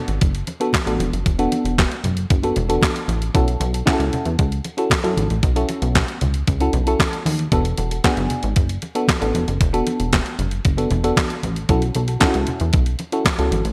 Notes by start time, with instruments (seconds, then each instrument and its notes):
Already playing: fm electric piano B3 D4 F#4 A4
0.08 analog synth bass G#1, closed hi-hat
0.21 analog synth bass F#1, kick, closed hi-hat
0.35 closed hi-hat
0.47 closed hi-hat, muted conga
0.60 fm electric piano B3 D4 F#4 A4, closed hi-hat
0.73 kick, snare, clap, closed hi-hat, high conga
0.86 analog synth bass A1, fm electric piano B3 D4 F#4 A4, closed hi-hat
1.00 analog synth bass E1, closed hi-hat, high conga
1.13 analog synth bass F#1, closed hi-hat
1.26 analog synth bass E1, kick, closed hi-hat, muted conga
1.39 fm electric piano B3 D4 F#4 A4, closed hi-hat
1.52 closed hi-hat, muted conga
1.65 analog synth bass E1, closed hi-hat
1.78 kick, snare, clap, closed hi-hat, high conga
1.92 closed hi-hat
2.04 analog synth bass F#1, closed hi-hat, low conga
2.17 closed hi-hat
2.30 analog synth bass F#1, kick, closed hi-hat
2.43 fm electric piano B3 D4 F#4 A4, closed hi-hat
2.56 analog synth bass E1, closed hi-hat, muted conga, low conga
2.69 fm electric piano B3 D4 F#4 A4, closed hi-hat
2.81 kick, snare, clap, closed hi-hat, high conga
2.96 closed hi-hat
3.08 analog synth bass A1, closed hi-hat, high conga
3.22 closed hi-hat
3.34 analog synth bass B1, fm electric piano C#4 E4 F#4 A4, kick, closed hi-hat, muted conga
3.48 closed hi-hat
3.60 analog synth bass B1, fm electric piano F#4 A4, closed hi-hat, muted conga
3.73 fm electric piano F#4 A4, closed hi-hat
3.86 fm electric piano C#4 E4 F#4 G#4, kick, snare, clap, closed hi-hat, high conga
3.93 fm electric piano A4
4.00 analog synth bass C#2, closed hi-hat
4.13 closed hi-hat, low conga
4.25 analog synth bass E2, closed hi-hat
4.39 analog synth bass C#2, kick, closed hi-hat
4.52 closed hi-hat
4.64 closed hi-hat, muted conga
4.77 fm electric piano C#4 E4 F#4 A4, closed hi-hat
4.90 kick, snare, clap, closed hi-hat, high conga
5.03 analog synth bass F#2, fm electric piano C#4 E4 F#4 A4, closed hi-hat
5.17 analog synth bass G#1, closed hi-hat, high conga
5.30 analog synth bass A1, closed hi-hat
5.43 analog synth bass B1, kick, closed hi-hat, muted conga
5.56 fm electric piano C#4 E4 F#4 A4, closed hi-hat
5.69 closed hi-hat, muted conga
5.82 analog synth bass B1, closed hi-hat
5.95 kick, snare, clap, closed hi-hat, high conga
6.08 closed hi-hat
6.21 analog synth bass C#2, closed hi-hat, low conga
6.34 closed hi-hat
6.47 analog synth bass C#2, kick, closed hi-hat
6.60 fm electric piano C#4 E4 F#4 A4, closed hi-hat
6.73 analog synth bass B1, closed hi-hat, muted conga, low conga
6.87 fm electric piano C#4 E4 F#4 A4, closed hi-hat
6.99 kick, snare, clap, closed hi-hat, high conga
7.13 closed hi-hat
7.26 analog synth bass D#2, open hi-hat, high conga
7.39 closed hi-hat
7.52 analog synth bass E1, fm electric piano B3 D4 F#4 A4, kick, closed hi-hat
7.65 closed hi-hat
7.78 analog synth bass E1, fm electric piano F#4 A4, closed hi-hat, muted conga
7.91 fm electric piano F#4 A4, closed hi-hat
8.04 fm electric piano B3 D4 F#4 G#4, kick, snare, clap, closed hi-hat, high conga
8.17 analog synth bass F#1, closed hi-hat
8.30 closed hi-hat, low conga
8.43 analog synth bass G#1, closed hi-hat
8.56 analog synth bass F#1, kick, closed hi-hat
8.69 closed hi-hat
8.82 closed hi-hat, muted conga
8.95 fm electric piano B3 D4 F#4 A4, closed hi-hat
9.08 kick, snare, clap, closed hi-hat, high conga
9.21 analog synth bass A1, fm electric piano B3 D4 F#4 A4, closed hi-hat
9.35 analog synth bass E1, closed hi-hat, high conga
9.48 analog synth bass F#1, closed hi-hat
9.61 analog synth bass E1, kick, closed hi-hat
9.73 fm electric piano B3 D4 F#4 A4, closed hi-hat
9.87 closed hi-hat, muted conga
10.00 analog synth bass E1, closed hi-hat
10.13 kick, snare, clap, closed hi-hat, high conga
10.26 closed hi-hat
10.39 analog synth bass F#1, closed hi-hat, low conga
10.51 closed hi-hat
10.65 analog synth bass F#1, kick, closed hi-hat
10.77 fm electric piano B3 D4 F#4 A4, closed hi-hat
10.91 analog synth bass E1, closed hi-hat, muted conga, low conga
11.04 fm electric piano B3 D4 F#4 A4, closed hi-hat
11.16 kick, snare, clap, closed hi-hat, high conga
11.30 closed hi-hat
11.43 analog synth bass A1, closed hi-hat, high conga
11.56 closed hi-hat
11.69 analog synth bass B1, fm electric piano C#4 E4 F#4 A4, kick, closed hi-hat
11.82 closed hi-hat
11.95 analog synth bass B1, fm electric piano F#4 A4, closed hi-hat, muted conga
12.08 fm electric piano F#4 A4, closed hi-hat
12.20 fm electric piano C#4 D#4 F#4 A4, kick, snare, clap, closed hi-hat, high conga
12.27 fm electric piano E4
12.34 analog synth bass C#2, closed hi-hat
12.47 closed hi-hat, low conga
12.60 analog synth bass E2, closed hi-hat
12.73 analog synth bass B1, kick, closed hi-hat
12.86 closed hi-hat
12.99 closed hi-hat, muted conga
13.12 fm electric piano C#4 E4 F#4 A4, closed hi-hat
13.25 kick, snare, clap, closed hi-hat, high conga
13.38 analog synth bass C#2, fm electric piano C#4 E4 F#4 A4, closed hi-hat
13.52 analog synth bass G#1, closed hi-hat, high conga
13.65 analog synth bass A1, closed hi-hat